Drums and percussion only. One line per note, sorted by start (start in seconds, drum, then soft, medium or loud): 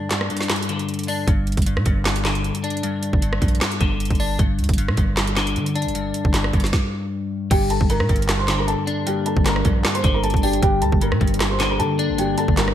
0.11 snare medium
0.11 clap medium
0.11 closed hi-hat medium
0.21 cross-stick loud
0.30 closed hi-hat soft
0.37 snare medium
0.37 closed hi-hat medium
0.43 closed hi-hat medium
0.50 snare loud
0.50 clap medium
0.50 closed hi-hat soft
0.56 closed hi-hat medium
0.63 closed hi-hat medium
0.69 closed hi-hat medium
0.79 closed hi-hat soft
0.89 closed hi-hat medium
0.94 closed hi-hat medium
0.99 closed hi-hat medium
1.03 closed hi-hat medium
1.08 open hi-hat medium
1.27 kick loud
1.27 closed hi-hat medium
1.47 closed hi-hat soft
1.52 closed hi-hat medium
1.57 kick loud
1.57 closed hi-hat medium
1.62 closed hi-hat medium
1.66 closed hi-hat medium
1.77 cross-stick loud
1.86 kick loud
1.86 closed hi-hat medium
2.05 snare loud
2.05 clap medium
2.05 closed hi-hat soft
2.16 closed hi-hat medium
2.25 snare loud
2.25 clap medium
2.25 closed hi-hat medium
2.35 closed hi-hat medium
2.44 closed hi-hat soft
2.55 closed hi-hat medium
2.64 closed hi-hat medium
2.70 closed hi-hat medium
2.77 closed hi-hat medium
2.83 closed hi-hat medium
3.03 closed hi-hat medium
3.13 kick loud
3.22 closed hi-hat medium
3.33 cross-stick loud
3.42 kick medium
3.42 closed hi-hat medium
3.48 closed hi-hat medium
3.55 closed hi-hat medium
3.61 snare loud
3.61 clap medium
3.61 closed hi-hat medium
3.72 closed hi-hat medium
3.81 kick loud
3.81 closed hi-hat medium
4.00 closed hi-hat medium
4.05 closed hi-hat medium
4.10 kick loud
4.10 closed hi-hat medium
4.15 closed hi-hat soft
4.20 open hi-hat medium
4.39 kick loud
4.39 closed hi-hat medium
4.59 closed hi-hat soft
4.64 closed hi-hat medium
4.69 kick loud
4.69 closed hi-hat medium
4.74 closed hi-hat medium
4.78 closed hi-hat medium
4.88 cross-stick loud
4.97 kick medium
4.97 closed hi-hat medium
5.17 snare loud
5.17 clap medium
5.17 closed hi-hat soft
5.27 closed hi-hat medium
5.37 snare loud
5.37 clap medium
5.37 closed hi-hat medium
5.47 closed hi-hat medium
5.56 closed hi-hat soft
5.66 closed hi-hat medium
5.75 closed hi-hat medium
5.82 closed hi-hat medium
5.88 closed hi-hat medium
5.95 closed hi-hat medium
6.14 closed hi-hat medium
6.25 kick loud
6.34 snare medium
6.34 clap medium
6.34 closed hi-hat medium
6.44 cross-stick loud
6.53 kick loud
6.53 closed hi-hat soft
6.60 snare medium
6.60 closed hi-hat medium
6.66 closed hi-hat medium
6.73 kick loud
6.73 snare medium
7.51 kick loud
7.51 closed hi-hat medium
7.51 crash loud
7.70 closed hi-hat medium
7.81 kick loud
7.90 closed hi-hat medium
8.00 cross-stick loud
8.09 kick loud
8.09 closed hi-hat soft
8.16 closed hi-hat medium
8.22 closed hi-hat medium
8.29 cross-stick medium
8.29 snare loud
8.29 clap medium
8.29 closed hi-hat medium
8.48 snare loud
8.48 clap medium
8.48 closed hi-hat medium
8.68 closed hi-hat medium
8.87 closed hi-hat medium
9.07 closed hi-hat medium
9.26 closed hi-hat medium
9.37 kick loud
9.46 snare loud
9.46 clap medium
9.46 closed hi-hat medium
9.56 cross-stick loud
9.65 kick loud
9.65 closed hi-hat medium
9.85 cross-stick medium
9.85 snare loud
9.85 clap medium
9.85 closed hi-hat soft
9.95 closed hi-hat medium
10.04 kick loud
10.04 closed hi-hat medium
10.24 closed hi-hat medium
10.30 kick loud
10.30 closed hi-hat medium
10.37 closed hi-hat soft
10.43 closed hi-hat soft
10.43 open hi-hat medium
10.53 closed hi-hat medium
10.63 kick loud
10.63 closed hi-hat medium
10.82 closed hi-hat medium
10.92 kick loud
11.01 closed hi-hat medium
11.12 cross-stick loud
11.21 kick loud
11.21 closed hi-hat soft
11.27 closed hi-hat medium
11.34 closed hi-hat medium
11.40 cross-stick medium
11.40 snare loud
11.40 clap medium
11.40 closed hi-hat medium
11.60 snare loud
11.60 clap medium
11.60 closed hi-hat medium
11.80 closed hi-hat medium
11.99 closed hi-hat medium
12.18 closed hi-hat medium
12.38 closed hi-hat medium
12.48 kick loud
12.57 snare loud
12.57 clap medium
12.57 closed hi-hat medium
12.68 cross-stick loud